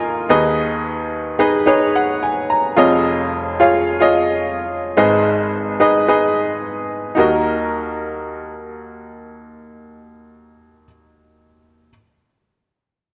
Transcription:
0.00 0.26 D#2 medium
0.00 0.26 D#3 medium
0.00 0.31 F4 medium
0.00 0.32 A#4 medium
0.00 0.30 D#5 medium
0.00 0.32 F5 medium
0.00 0.30 G#5 medium
0.29 2.46 D#2 medium
0.29 2.46 D#3 medium
0.29 1.27 D#4 medium
0.29 1.28 G#4 medium
0.29 1.28 B4 medium
0.29 1.28 D#5 medium
1.39 1.64 D#4 medium
1.39 1.64 G#4 medium
1.39 1.64 B4 medium
1.39 1.65 D#5 medium
1.66 2.65 D#4 medium
1.66 2.65 G#4 medium
1.66 2.65 B4 medium
1.66 2.65 C#5 medium
1.96 2.21 F#5 medium
2.23 2.48 G#5 medium
2.50 2.75 A#5 medium
2.76 4.93 F1 medium
2.76 4.93 F2 medium
2.76 3.50 F4 medium
2.76 3.51 G#4 medium
2.76 3.51 C#5 medium
2.76 3.51 D#5 medium
3.59 3.96 F4 medium
3.59 3.97 G#4 medium
3.59 3.97 C#5 medium
3.59 3.97 F5 medium
4.00 4.86 F4 medium
4.00 4.87 G#4 medium
4.00 4.87 C#5 medium
4.00 4.87 D#5 medium
4.97 7.14 G#1 medium
4.97 7.14 G#2 medium
4.97 5.71 D#4 medium
4.97 5.71 G#4 medium
4.97 5.71 B4 medium
4.97 5.71 D#5 medium
5.80 6.04 D#4 medium
5.80 6.05 G#4 medium
5.80 6.05 B4 medium
5.80 6.05 D#5 medium
6.08 7.06 D#4 medium
6.08 7.06 G#4 medium
6.08 7.06 B4 medium
6.08 7.06 D#5 medium
7.15 10.84 D#2 medium
7.15 10.83 D#4 medium
7.15 10.84 F#4 medium
7.15 10.84 A#4 medium
7.20 10.85 D#5 medium

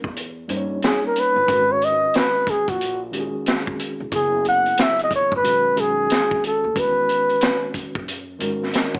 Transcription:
0.04 0.44 E2 medium
0.04 kick loud
0.16 closed hi-hat medium
0.48 0.79 G2 loud
0.48 1.40 G3 medium
0.48 1.40 A#3 medium
0.48 1.40 C#4 medium
0.48 1.40 D#4 medium
0.48 0.58 C5 medium
0.48 closed hi-hat medium
0.57 1.44 C#5 loud
0.82 1.03 G#4 medium
0.82 snare loud
0.82 closed hi-hat medium
1.06 1.21 A#4 medium
1.16 1.73 B4 loud
1.16 closed hi-hat medium
1.36 1.47 G1 medium
1.46 2.07 G#1 loud
1.46 2.68 D#3 medium
1.46 2.69 G#3 medium
1.46 2.69 C#4 medium
1.46 2.70 F#4 medium
1.46 1.57 A#4 medium
1.46 kick loud
1.46 closed hi-hat medium
1.55 2.73 B4 medium
1.72 1.86 C#5 loud
1.81 2.18 D#5 loud
1.81 closed hi-hat medium
2.14 2.51 B4 loud
2.14 snare loud
2.14 closed hi-hat loud
2.47 2.71 G#4 medium
2.47 kick medium
2.47 closed hi-hat medium
2.68 3.27 A#1 medium
2.68 3.02 F#4 medium
2.68 kick loud
2.68 closed hi-hat medium
2.81 closed hi-hat medium
3.11 4.03 D#3 medium
3.11 4.04 G#3 medium
3.11 4.04 C#4 medium
3.11 4.04 F#4 medium
3.11 3.22 G4 medium
3.11 closed hi-hat medium
3.20 4.08 G#4 loud
3.46 snare loud
3.46 closed hi-hat medium
3.67 kick medium
3.79 closed hi-hat medium
4.00 4.11 E1 medium
4.10 4.70 F#1 loud
4.10 5.32 C#3 medium
4.10 5.33 F#3 medium
4.10 5.33 B3 medium
4.10 5.33 E4 medium
4.10 5.34 G#4 medium
4.10 kick loud
4.10 closed hi-hat loud
4.15 4.44 G#4 medium
4.45 4.83 F#5 loud
4.45 closed hi-hat medium
4.65 closed hi-hat soft
4.77 snare loud
4.77 closed hi-hat medium
4.82 5.01 E5 loud
4.99 closed hi-hat medium
5.03 5.12 D#5 loud
5.11 kick medium
5.11 closed hi-hat medium
5.15 5.33 C#5 loud
5.32 5.42 G#1 medium
5.32 kick loud
5.36 5.81 B4 loud
5.42 5.73 B1 loud
5.42 5.73 D#3 medium
5.42 5.74 G#3 medium
5.42 5.74 C#4 medium
5.42 5.74 F#4 medium
5.42 5.75 B4 medium
5.42 closed hi-hat medium
5.74 6.06 B1 loud
5.74 6.67 D#3 medium
5.74 6.67 G#3 medium
5.74 6.67 C#4 medium
5.74 6.67 F#4 medium
5.74 6.68 G#4 medium
5.74 closed hi-hat medium
5.80 6.44 G#4 loud
6.10 snare medium
6.10 closed hi-hat medium
6.31 kick loud
6.44 6.81 A4 medium
6.44 closed hi-hat medium
6.64 6.75 D#2 medium
6.74 7.34 E2 medium
6.74 7.96 D#3 medium
6.74 6.83 G3 medium
6.74 7.97 C#4 medium
6.74 7.97 F#4 medium
6.74 7.97 B4 medium
6.74 kick loud
6.74 closed hi-hat loud
6.79 8.00 G#3 medium
6.79 7.76 B4 medium
7.09 closed hi-hat medium
7.29 closed hi-hat soft
7.41 snare loud
7.41 closed hi-hat loud
7.74 kick medium
7.74 closed hi-hat medium
7.95 8.35 F#2 medium
7.95 kick loud
8.08 closed hi-hat medium
8.39 8.70 G#2 loud
8.39 8.99 D#3 loud
8.39 8.99 G#3 medium
8.39 8.99 C#4 medium
8.39 8.99 F#4 medium
8.39 8.73 A#4 loud
8.39 closed hi-hat medium
8.63 snare soft
8.73 8.94 A#4 medium
8.73 8.93 D#5 medium
8.73 snare medium
8.73 closed hi-hat medium
8.94 8.99 C#5 medium
8.94 8.99 F#5 medium
8.94 kick loud

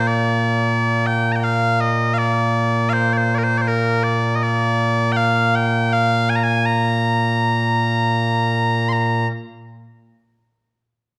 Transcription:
0.00 9.28 A#2 medium
0.00 9.28 A#3 medium
0.07 1.07 D5 medium
1.07 1.32 G5 medium
1.32 1.44 G5 medium
1.32 1.36 A#5 medium
1.44 1.81 F5 loud
1.81 2.14 D#5 medium
2.14 2.18 F5 loud
2.18 2.89 D5 loud
2.89 3.13 C5 medium
2.89 2.93 F5 medium
3.13 3.17 D5 medium
3.17 3.35 C5 medium
3.35 3.44 A#4 medium
3.35 3.38 D5 medium
3.44 3.58 C5 medium
3.58 3.68 C5 medium
3.58 3.61 D5 medium
3.68 4.03 A#4 medium
4.03 4.35 D5 medium
4.35 4.43 D#5 medium
4.43 5.12 D5 loud
5.12 5.17 G5 loud
5.17 5.55 F5 loud
5.55 5.93 G5 medium
5.93 6.30 F5 loud
6.30 6.36 G#5 loud
6.36 6.43 A#5 medium
6.43 6.66 G#5 loud
6.66 8.89 A#5 loud
8.89 9.28 A#5 medium
8.89 8.92 C6 medium

